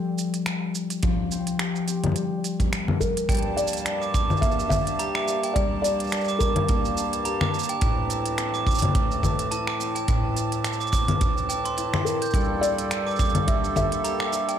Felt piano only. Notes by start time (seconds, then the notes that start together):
3.00 A#4
3.57 D5
4.41 E5
4.69 E5
5.54 D5
5.82 D5
6.39 A#4
12.05 A#4
12.61 D5
13.47 E5
13.76 E5